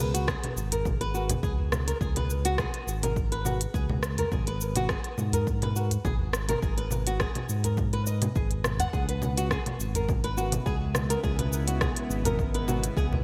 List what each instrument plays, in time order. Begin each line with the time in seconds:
Already playing: analog synth bass C#2, singing bowl G#4
0.14 nylon-string guitar F#4, closed hi-hat, cabasa
0.28 nylon-string guitar G#4, kick, cross-stick, cabasa
0.44 closed hi-hat, low conga
0.57 analog synth bass G#1, cabasa
0.71 nylon-string guitar A#4, closed hi-hat, udu, cabasa
0.85 kick, low conga, cabasa
1.01 nylon-string guitar B4, closed hi-hat
1.14 nylon-string guitar F#4, cabasa
1.29 closed hi-hat, udu, low conga, cabasa
1.43 analog synth bass C#2, nylon-string guitar G#4, kick, cabasa
1.59 udu
1.72 cross-stick, low conga, cabasa
1.87 nylon-string guitar A#4, closed hi-hat, cabasa
2.01 analog synth bass C#2, nylon-string guitar G#4, kick, cabasa
2.16 nylon-string guitar B4, closed hi-hat, low conga
2.30 cabasa
2.45 nylon-string guitar F#4, closed hi-hat, cabasa
2.58 nylon-string guitar G#4, kick, cross-stick, low conga, cabasa
2.74 closed hi-hat
2.87 analog synth bass G#1, cabasa
3.03 nylon-string guitar A#4, closed hi-hat, udu, low conga, cabasa
3.16 kick, cabasa
3.32 nylon-string guitar B4, closed hi-hat
3.45 nylon-string guitar F#4, low conga, cabasa
3.61 closed hi-hat, cabasa
3.74 analog synth bass C#2, nylon-string guitar G#4, kick, cabasa
3.89 udu, low conga
4.03 cross-stick, cabasa
4.17 nylon-string guitar A#4, closed hi-hat, udu, cabasa
4.32 analog synth bass G#1, nylon-string guitar G#4, kick, low conga, cabasa
4.47 nylon-string guitar B4, closed hi-hat
4.61 cabasa
4.76 nylon-string guitar F#4, closed hi-hat, low conga, cabasa
4.89 nylon-string guitar G#4, kick, cross-stick, cabasa
5.04 closed hi-hat
5.18 analog synth bass G#2, low conga, cabasa
5.32 nylon-string guitar A#4, closed hi-hat, udu, cabasa
5.47 kick, cabasa
5.62 nylon-string guitar B4, closed hi-hat, low conga
5.76 nylon-string guitar F#4, cabasa
5.90 closed hi-hat, udu, cabasa
6.05 analog synth bass G#1, nylon-string guitar G#4, kick, low conga, cabasa
6.19 udu
6.33 cross-stick, cabasa
6.49 nylon-string guitar A#4, closed hi-hat, low conga, cabasa
6.62 analog synth bass G#1, nylon-string guitar G#4, kick, cabasa
6.78 nylon-string guitar B4, closed hi-hat
6.91 low conga, cabasa
7.07 nylon-string guitar F#4, closed hi-hat, cabasa
7.20 nylon-string guitar G#4, kick, cross-stick, cabasa
7.35 closed hi-hat, low conga
7.49 analog synth bass G#2, cabasa
7.63 nylon-string guitar A#4, closed hi-hat, udu, cabasa
7.77 kick, low conga, cabasa
7.93 nylon-string guitar B4, closed hi-hat
8.06 nylon-string guitar D#5, cabasa
8.22 closed hi-hat, low conga, cabasa
8.36 analog synth bass G#1, nylon-string guitar G#4, kick, cabasa
8.51 closed hi-hat, udu
8.64 cross-stick, low conga, cabasa
8.79 nylon-string guitar F#5, closed hi-hat, udu, cabasa
8.93 analog synth bass C#2, synth drone C#3 G#3 B3 E4, nylon-string guitar G#4, kick, cabasa
9.09 nylon-string guitar B4, closed hi-hat
9.22 low conga, cabasa
9.37 nylon-string guitar F#4, closed hi-hat, cabasa
9.51 nylon-string guitar G#4, kick, cross-stick, cabasa
9.66 closed hi-hat, low conga
9.79 analog synth bass G#1, cabasa
9.94 nylon-string guitar A#4, closed hi-hat, udu, cabasa
10.09 kick, low conga, cabasa
10.24 nylon-string guitar B4, closed hi-hat
10.37 nylon-string guitar F#4, cabasa
10.52 closed hi-hat, udu, low conga, cabasa
10.66 analog synth bass C#2, nylon-string guitar G#4, kick, cabasa
10.81 udu
10.95 cross-stick, low conga, cabasa
11.10 nylon-string guitar A#4, closed hi-hat, cabasa
11.23 analog synth bass C#2, nylon-string guitar G#4, kick, cabasa
11.39 nylon-string guitar B4, closed hi-hat, low conga
11.53 cabasa
11.68 nylon-string guitar F#4, closed hi-hat, cabasa
11.81 nylon-string guitar G#4, kick, cross-stick, low conga, cabasa
11.96 closed hi-hat
12.10 analog synth bass G#1, cabasa
12.24 nylon-string guitar A#4, closed hi-hat, udu, low conga, cabasa
12.39 kick, cabasa
12.54 nylon-string guitar B4, closed hi-hat
12.68 nylon-string guitar F#4, low conga, cabasa
12.84 closed hi-hat, cabasa
12.97 analog synth bass C#2, nylon-string guitar G#4, kick, cabasa
13.12 udu, low conga